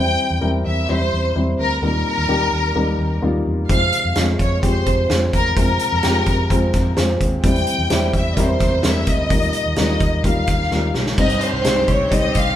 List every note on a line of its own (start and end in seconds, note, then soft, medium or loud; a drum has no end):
0.00 0.14 E2 medium
0.00 0.61 E3 soft
0.00 0.34 G3 medium
0.00 0.34 C4 soft
0.00 0.34 E4 medium
0.00 0.34 C5 medium
0.00 0.39 G5 medium
0.30 0.40 E2 medium
0.41 0.61 E2 medium
0.41 0.80 G3 medium
0.41 0.80 C4 medium
0.41 0.80 E4 medium
0.41 0.80 A#4 medium
0.66 0.85 E2 medium
0.66 0.87 E5 medium
0.89 1.08 E2 medium
0.89 1.27 G3 medium
0.89 1.27 C4 medium
0.89 1.28 E4 medium
0.89 1.28 C5 medium
0.89 1.36 C5 medium
1.13 1.32 E2 medium
1.36 1.55 E2 medium
1.36 1.75 G3 medium
1.36 1.75 C4 medium
1.36 1.74 E4 medium
1.36 1.74 C5 medium
1.59 1.78 D2 medium
1.59 1.81 A#4 medium
1.82 2.01 D#2 medium
1.82 2.49 A#2 medium
1.82 2.21 G3 medium
1.82 2.21 A#3 soft
1.82 2.21 D#4 medium
1.82 2.21 A#4 medium
1.82 3.19 A#4 medium
2.18 2.27 D#2 medium
2.28 2.48 D#2 medium
2.28 2.68 G3 medium
2.28 2.68 A#3 medium
2.28 2.68 D#4 medium
2.28 2.68 G4 medium
2.52 2.71 D#2 medium
2.75 2.95 D#2 medium
2.75 3.15 G3 medium
2.75 3.15 A#3 medium
2.75 3.15 D#4 medium
2.75 3.14 A#4 medium
2.98 3.18 D#2 medium
3.22 3.42 D#2 medium
3.22 3.61 G3 medium
3.22 3.61 A#3 medium
3.22 3.61 D#4 medium
3.22 3.61 F4 medium
3.46 3.65 E2 medium
3.69 3.89 F2 medium
3.69 4.35 C3 medium
3.69 4.08 G#3 soft
3.69 4.08 C4 soft
3.69 4.08 F4 soft
3.69 4.08 C5 medium
3.69 4.13 F5 medium
3.69 kick medium
3.69 closed hi-hat medium
3.93 closed hi-hat medium
4.04 4.14 F2 medium
4.15 4.35 F2 medium
4.15 4.55 G#3 medium
4.15 4.55 C4 medium
4.15 4.55 F4 medium
4.15 4.55 D#5 medium
4.15 snare medium
4.15 closed hi-hat medium
4.39 4.59 F2 medium
4.39 4.61 C#5 medium
4.39 kick medium
4.39 closed hi-hat medium
4.63 4.82 F2 medium
4.63 5.02 G#3 medium
4.63 5.02 C4 soft
4.63 5.02 F4 medium
4.63 5.02 G4 medium
4.63 5.07 C5 medium
4.63 kick medium
4.63 closed hi-hat medium
4.86 5.06 F2 medium
4.86 kick medium
4.86 closed hi-hat medium
5.10 5.29 F2 medium
5.10 5.49 G#3 soft
5.10 5.49 C4 soft
5.10 5.49 F4 soft
5.10 5.49 C5 medium
5.10 snare medium
5.10 closed hi-hat medium
5.33 5.52 E2 medium
5.33 5.56 A#4 medium
5.33 kick medium
5.33 closed hi-hat medium
5.57 5.76 F2 medium
5.57 6.23 C3 soft
5.57 5.95 G#3 medium
5.57 5.95 C4 soft
5.57 5.95 F4 medium
5.57 6.94 A#4 medium
5.57 5.95 C5 medium
5.57 kick medium
5.57 closed hi-hat medium
5.79 closed hi-hat medium
5.92 6.02 F2 medium
6.03 6.23 F2 medium
6.03 6.42 G#3 medium
6.03 6.42 C4 medium
6.03 6.42 F4 medium
6.03 6.42 G4 medium
6.03 snare medium
6.03 closed hi-hat medium
6.26 6.46 F2 medium
6.26 kick medium
6.26 closed hi-hat medium
6.50 6.69 F2 medium
6.50 6.89 G#3 medium
6.50 6.89 C4 medium
6.50 6.89 F4 medium
6.50 6.89 C5 medium
6.50 kick medium
6.50 closed hi-hat medium
6.73 6.93 F2 medium
6.73 kick medium
6.73 snare soft
6.73 closed hi-hat medium
6.97 7.16 F2 medium
6.97 7.35 G#3 medium
6.97 7.35 C4 medium
6.97 7.35 F4 medium
6.97 7.35 C5 medium
6.97 snare medium
6.97 closed hi-hat medium
7.21 7.40 D#2 medium
7.21 kick medium
7.21 closed hi-hat medium
7.44 7.63 E2 medium
7.44 8.10 E3 medium
7.44 7.83 G3 medium
7.44 7.83 C4 soft
7.44 7.83 E4 medium
7.44 7.83 C5 medium
7.44 8.11 G5 medium
7.44 kick loud
7.44 closed hi-hat medium
7.56 closed hi-hat soft
7.67 closed hi-hat medium
7.78 7.88 E2 medium
7.90 8.09 E2 medium
7.90 8.29 G3 medium
7.90 8.29 C4 medium
7.90 8.29 E4 medium
7.90 8.29 C5 medium
7.90 snare medium
7.90 closed hi-hat medium
8.13 8.33 E2 medium
8.13 8.37 E5 medium
8.13 kick medium
8.13 closed hi-hat soft
8.37 8.56 E2 medium
8.37 8.76 G3 medium
8.37 8.76 C4 medium
8.37 8.76 E4 medium
8.37 8.76 A#4 medium
8.37 8.85 C5 medium
8.37 kick medium
8.37 closed hi-hat medium
8.60 8.80 E2 medium
8.60 kick medium
8.60 snare soft
8.60 closed hi-hat medium
8.83 9.03 E2 medium
8.83 9.22 G3 medium
8.83 9.23 C4 medium
8.83 9.23 E4 soft
8.83 9.23 A#4 medium
8.83 snare loud
8.83 closed hi-hat medium
8.87 9.09 E5 medium
9.07 9.27 D2 medium
9.07 9.79 D#5 medium
9.07 kick medium
9.07 closed hi-hat medium
9.30 9.50 D#2 medium
9.30 9.97 A#2 soft
9.30 9.69 G3 medium
9.30 9.69 D#4 soft
9.30 9.69 F4 medium
9.30 9.69 A#4 medium
9.30 kick loud
9.30 closed hi-hat medium
9.42 closed hi-hat soft
9.53 closed hi-hat medium
9.66 9.75 D#2 medium
9.76 9.97 D#2 medium
9.76 10.16 G3 medium
9.76 10.16 D#4 soft
9.76 10.16 F4 medium
9.76 10.16 A#4 medium
9.76 snare medium
9.76 closed hi-hat medium
9.80 10.23 D#5 medium
10.00 10.20 D#2 medium
10.00 kick medium
10.00 closed hi-hat medium
10.24 10.43 D#2 medium
10.24 10.63 G3 medium
10.24 10.63 D#4 soft
10.24 10.64 F4 medium
10.24 10.64 A#4 medium
10.24 10.96 F5 medium
10.24 kick medium
10.24 closed hi-hat medium
10.47 10.67 D#2 medium
10.47 kick medium
10.47 snare soft
10.47 closed hi-hat medium
10.71 10.91 D#2 medium
10.71 11.10 G3 medium
10.71 11.10 D#4 medium
10.71 11.10 F4 medium
10.71 11.10 A#4 medium
10.71 snare soft
10.94 11.14 B1 medium
10.94 snare medium
11.06 snare medium
11.18 11.37 C2 medium
11.18 11.85 G2 soft
11.18 12.56 D#3 medium
11.18 11.57 G3 medium
11.18 12.56 C4 medium
11.18 11.57 C4 medium
11.18 11.57 D#4 medium
11.18 12.56 G4 medium
11.18 11.57 C5 medium
11.18 11.41 D#5 medium
11.18 kick loud
11.18 crash medium
11.30 closed hi-hat soft
11.41 11.89 C5 medium
11.41 closed hi-hat medium
11.53 11.63 C2 medium
11.64 11.84 C2 medium
11.64 12.03 G3 medium
11.64 12.04 C4 medium
11.64 12.04 D#4 medium
11.64 12.04 C5 medium
11.64 snare loud
11.64 closed hi-hat medium
11.88 12.07 C2 loud
11.88 12.12 C#5 medium
11.88 kick medium
11.88 closed hi-hat medium
12.11 12.31 C2 medium
12.11 12.50 G3 medium
12.11 12.50 C4 medium
12.11 12.50 D#4 medium
12.11 12.50 C5 medium
12.11 12.36 D#5 medium
12.11 kick medium
12.11 closed hi-hat medium
12.35 12.55 C2 medium
12.35 12.56 F5 medium
12.35 kick medium
12.35 closed hi-hat medium